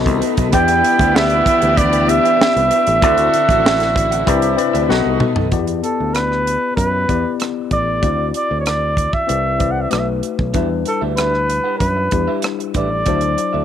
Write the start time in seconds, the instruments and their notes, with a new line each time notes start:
Already playing: string section A3 D#4 B4, tine electric piano B3 F#4 A4 D#5
0.06 fingered electric bass C2, muted clean electric guitar stroke, kick, closed hi-hat
0.21 clean electric guitar B3 F#4 A4 D#5, closed hi-hat
0.37 fingered electric bass B1, clean electric guitar B3 F#4 A4 D#5, kick, closed hi-hat
0.52 fingered electric bass E2, string section E3 D4 G4, horn section G3 B3 E4, tine electric piano B3 E4 G4 D5, clean electric guitar D4 G4 B4 E5, flugelhorn G5, kick, closed hi-hat
0.68 muted clean electric guitar stroke, closed hi-hat
0.84 muted clean electric guitar stroke, closed hi-hat
0.99 fingered electric bass D2, clean electric guitar D4 G4 B4 E5, kick, closed hi-hat
1.15 clean electric guitar D4 G4 B4 E5, flugelhorn E5, snare
1.30 closed hi-hat
1.46 muted clean electric guitar stroke, kick, closed hi-hat
1.61 fingered electric bass D2, clean electric guitar D4 G4 B4 F#5, closed hi-hat
1.77 flugelhorn D5, muted clean electric guitar stroke, kick, closed hi-hat
1.92 muted clean electric guitar stroke, closed hi-hat
2.07 tine electric piano B3 E4 G4 D5, flugelhorn E5, closed hi-hat
2.24 clean electric guitar D4 G4 B4 E5, closed hi-hat
2.39 muted clean electric guitar stroke, muted fingered electric bass stroke, snare
2.55 fingered electric bass C2, muted clean electric guitar stroke, closed hi-hat
2.71 clean electric guitar D4 G4 B4 E5, closed hi-hat
2.86 fingered electric bass A1, muted clean electric guitar stroke, closed hi-hat
3.02 fingered electric bass D2, string section D3 C4 E4 F#4, tine electric piano C4 E4 F#4 D5, clean electric guitar C4 F#4 A4 E5, horn section E4 F#4 A4, kick, closed hi-hat
3.18 muted clean electric guitar stroke, closed hi-hat
3.34 muted clean electric guitar stroke, muted fingered electric bass stroke, closed hi-hat
3.49 fingered electric bass A1, clean electric guitar C4 F#4 A4 E5, kick, closed hi-hat
3.63 clean electric guitar C4 F#4 A4 E5, snare
3.80 snare, closed hi-hat
3.96 muted clean electric guitar stroke, kick, closed hi-hat
4.11 clean electric guitar C4 F#4 A4 F#5, closed hi-hat
4.26 fingered electric bass C2, string section C3 D4 B4, tine electric piano C4 E4 B4 D5, horn section D4 E4 G4, muted clean electric guitar stroke, kick, closed hi-hat
4.42 muted clean electric guitar stroke, closed hi-hat
4.56 tine electric piano C4 E4 B4 D5, closed hi-hat
4.73 fingered electric bass D2, clean electric guitar D4 G4 B4 E5, closed hi-hat
4.89 fingered electric bass B1, string section A3 D#4, tine electric piano B3 F#4 A4 D#5, horn section B3 D#4 F#4, muted clean electric guitar stroke, snare
5.05 fingered electric bass C2, muted clean electric guitar stroke
5.20 clean electric guitar B3 F#4 A4 D#5, mid tom
5.35 fingered electric bass B1, clean electric guitar B3 F#4 A4 D#5, floor tom
5.52 fingered electric bass E2, tine electric piano B3 E4 F#4 D5, kick, closed hi-hat
5.59 tine electric piano G4
5.67 closed hi-hat
5.84 flugelhorn A4, closed hi-hat
6.00 fingered electric bass D2
6.14 flugelhorn B4, cross-stick, closed hi-hat
6.32 cross-stick
6.47 closed hi-hat
6.76 fingered electric bass F#2, flugelhorn B4, kick, closed hi-hat
7.08 fingered electric bass E2, tine electric piano B3 E4 G4 D5, kick, closed hi-hat
7.40 cross-stick, closed hi-hat
7.71 fingered electric bass A1, flugelhorn D5, kick, closed hi-hat
8.02 fingered electric bass D2, tine electric piano C4 E4 F#4 D5, kick, closed hi-hat
8.34 flugelhorn D5, closed hi-hat
8.51 fingered electric bass D2
8.60 flugelhorn C#5
8.66 flugelhorn D5, cross-stick, closed hi-hat
8.97 kick, closed hi-hat
9.13 flugelhorn E5, kick
9.27 fingered electric bass C2, tine electric piano C4 E4 B4 D5, closed hi-hat
9.59 tine electric piano C4 E4 B4 D5, kick, closed hi-hat
9.71 flugelhorn F#5
9.81 flugelhorn E5
9.90 fingered electric bass B1, tine electric piano A3 D#4 F#4 B4, flugelhorn D5, cross-stick, closed hi-hat
9.99 flugelhorn E5
10.23 closed hi-hat
10.39 fingered electric bass B1, kick
10.54 fingered electric bass E2, tine electric piano G3 D4 E4 B4, clean electric guitar D4 G4 B4 E5, kick, closed hi-hat
10.70 muted clean electric guitar stroke
10.86 flugelhorn A4, muted clean electric guitar stroke, closed hi-hat
11.01 fingered electric bass D2, clean electric guitar D4 G4 B4 E5
11.16 clean electric guitar D4 G4 B4 E5, flugelhorn B4, cross-stick, closed hi-hat
11.34 cross-stick
11.48 muted clean electric guitar stroke, closed hi-hat
11.64 clean electric guitar D4 G4 B4 F#5
11.79 fingered electric bass F#2, flugelhorn B4, muted clean electric guitar stroke, kick, closed hi-hat
11.97 muted clean electric guitar stroke
12.11 fingered electric bass E2, tine electric piano G3 D4 E4 G4, kick, closed hi-hat
12.28 clean electric guitar D4 G4 B4 E5
12.42 cross-stick, closed hi-hat
12.59 muted clean electric guitar stroke, closed hi-hat
12.74 fingered electric bass A1, clean electric guitar D4 G4 B4 E5, flugelhorn D5, kick, closed hi-hat
12.90 muted clean electric guitar stroke
13.06 fingered electric bass D2, tine electric piano F#3 D4 E4 C5, clean electric guitar C4 F#4 A4 E5, kick, closed hi-hat
13.21 muted clean electric guitar stroke, closed hi-hat
13.37 muted clean electric guitar stroke, closed hi-hat
13.53 fingered electric bass D2, clean electric guitar C4 F#4 A4 E5